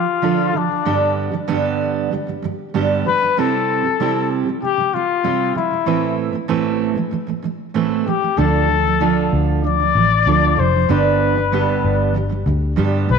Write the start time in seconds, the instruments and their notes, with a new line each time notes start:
Already playing: steel-string acoustic guitar D3 F3, trumpet F4
0.22 steel-string acoustic guitar D3 F3 D4 F4 A4
0.54 steel-string acoustic guitar D3 F3, trumpet D4
0.68 steel-string acoustic guitar D3 F3
0.85 steel-string acoustic guitar G2 D3 G3 B3 D4 G4
1.32 steel-string acoustic guitar G2 D3 G3
1.48 steel-string acoustic guitar G2 D3 G3 B3 D4 G4
2.11 steel-string acoustic guitar G2 D3 G3
2.27 steel-string acoustic guitar G2 D3 G3
2.42 steel-string acoustic guitar G2 D3 G3
2.74 steel-string acoustic guitar G2 D3 G3 B3 D4 G4
3.05 steel-string acoustic guitar G2 D3 G3, trumpet B4
3.21 steel-string acoustic guitar G2 D3 G3
3.37 steel-string acoustic guitar C3 G3 C4 E4 G4, trumpet A4
3.84 steel-string acoustic guitar C3 G3
4.00 steel-string acoustic guitar C3 G3 C4 E4 G4
4.46 steel-string acoustic guitar C3 G3
4.62 steel-string acoustic guitar C3 G3, trumpet G4
4.77 steel-string acoustic guitar C3 G3
4.93 steel-string acoustic guitar C3 G3, trumpet F4
5.24 steel-string acoustic guitar C3 G3 C4 G4
5.55 steel-string acoustic guitar C3 G3, trumpet E4
5.71 steel-string acoustic guitar C3 G3
5.86 steel-string acoustic guitar A2 E3 A3 C4 E4 B4
6.33 steel-string acoustic guitar A2 E3 A3
6.48 steel-string acoustic guitar A2 E3 A3 C4 E4 B4
6.96 steel-string acoustic guitar A2 E3 A3
7.11 steel-string acoustic guitar A2 E3 A3
7.27 steel-string acoustic guitar A2 E3 A3
7.42 steel-string acoustic guitar A2 E3 A3
7.74 steel-string acoustic guitar A2 E3 A3 C4 E4 B4
8.06 steel-string acoustic guitar A2 E3 A3, trumpet G4
8.22 steel-string acoustic guitar A2 E3 A3
8.37 fingered electric bass D2, steel-string acoustic guitar D3 F3 D4 F4 A4, trumpet A4
8.68 steel-string acoustic guitar D3 F3
8.84 steel-string acoustic guitar D3 F3
9.00 steel-string acoustic guitar D3 F3 D4 F4 A4
9.33 fingered electric bass D2
9.64 steel-string acoustic guitar D3 F3, trumpet D5
9.80 steel-string acoustic guitar D3 F3
9.95 fingered electric bass A1, steel-string acoustic guitar D3 F3
10.26 fingered electric bass D2, steel-string acoustic guitar D3 F3 D4 F4 A4
10.57 fingered electric bass F1, steel-string acoustic guitar D3 F3, trumpet C5
10.73 steel-string acoustic guitar D3 F3
10.89 fingered electric bass G1, steel-string acoustic guitar G2 D3 G3 B3 D4 G4, trumpet B4
11.35 steel-string acoustic guitar G2 D3 G3
11.52 steel-string acoustic guitar G2 D3 G3 B3 D4 G4
11.84 fingered electric bass G1
12.14 steel-string acoustic guitar G2 D3 G3
12.29 steel-string acoustic guitar G2 D3 G3
12.46 fingered electric bass D2, steel-string acoustic guitar G2 D3 G3
12.76 steel-string acoustic guitar G2 D3 G3 B3 D4 G4, fingered electric bass G2
13.09 fingered electric bass B1, steel-string acoustic guitar G2 D3 G3, trumpet B4